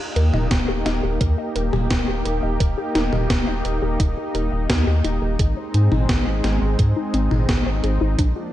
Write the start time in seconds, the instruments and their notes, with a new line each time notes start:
Already playing: analog synth pad A#3 D#4 G4
0.16 analog synth bass D#2, synth arpeggio sound A#4, closed hi-hat
0.33 analog synth bass D#1, synth arpeggio sound D#5, mid tom
0.51 analog synth bass D#1, synth arpeggio sound A#4, kick, snare, closed hi-hat
0.68 analog synth bass D#1, synth arpeggio sound G4
0.86 analog synth bass D#1, synth arpeggio sound D#4, snare, closed hi-hat
1.03 analog synth bass D#1, synth arpeggio sound G4
1.21 analog synth bass D#2, synth arpeggio sound A#4, kick, closed hi-hat
1.38 synth arpeggio sound D#5
1.56 analog synth bass D#1, synth arpeggio sound A#4, closed hi-hat
1.73 analog synth bass D#1, synth arpeggio sound G4, mid tom
1.90 analog synth bass D#1, synth arpeggio sound D#4, kick, snare, closed hi-hat
2.08 analog synth bass D#1, synth arpeggio sound G4
2.25 analog synth bass D#1, synth arpeggio sound A#4, closed hi-hat
2.43 analog synth bass D#1, synth arpeggio sound D#5
2.60 analog synth bass D#1, synth arpeggio sound A#4, kick, closed hi-hat
2.78 synth arpeggio sound G4
2.95 analog synth bass D#1, synth arpeggio sound D#4, snare, closed hi-hat
3.13 analog synth bass D#1, synth arpeggio sound G4, mid tom
3.30 analog synth bass D#1, synth arpeggio sound A#4, kick, snare, closed hi-hat
3.47 analog synth bass D#1, synth arpeggio sound D#5
3.65 analog synth bass D#1, synth arpeggio sound A#4, closed hi-hat
3.82 analog synth bass D#1, synth arpeggio sound G4
4.00 analog synth bass D#1, synth arpeggio sound D#4, kick, closed hi-hat
4.17 synth arpeggio sound G4
4.35 analog synth bass D#1, synth arpeggio sound A#4, closed hi-hat
4.52 analog synth bass D#1, synth arpeggio sound D#5
4.70 analog synth bass D#2, synth arpeggio sound A#4, kick, snare, closed hi-hat
4.87 analog synth bass D#2, synth arpeggio sound G4
5.04 analog synth bass D#1, synth arpeggio sound D#4, closed hi-hat
5.22 analog synth bass D#1, synth arpeggio sound G4
5.39 analog synth bass G#1, analog synth pad G#3 C4, synth arpeggio sound G#4, kick, closed hi-hat
5.57 synth arpeggio sound C5
5.74 analog synth bass G#2, synth arpeggio sound G#4, closed hi-hat
5.92 analog synth bass G#1, synth arpeggio sound D#4, mid tom
6.09 analog synth bass G#1, synth arpeggio sound C4, kick, snare, closed hi-hat
6.27 analog synth bass G#1, synth arpeggio sound D#4
6.44 analog synth bass G#1, synth arpeggio sound G#4, snare, closed hi-hat
6.62 analog synth bass G#1, synth arpeggio sound C5
6.79 analog synth bass G#2, synth arpeggio sound G#4, kick, closed hi-hat
6.96 synth arpeggio sound D#4
7.14 analog synth bass G#1, synth arpeggio sound C4, closed hi-hat
7.31 analog synth bass G#1, synth arpeggio sound D#4, mid tom
7.49 analog synth bass G#1, synth arpeggio sound G#4, kick, snare, closed hi-hat
7.66 analog synth bass G#1, synth arpeggio sound C5
7.84 analog synth bass G#1, synth arpeggio sound G#4, closed hi-hat
8.01 analog synth bass G#1, synth arpeggio sound D#4
8.18 analog synth bass A#1, analog synth pad F3 A#3 D4, synth arpeggio sound D4, kick, closed hi-hat
8.36 synth arpeggio sound F4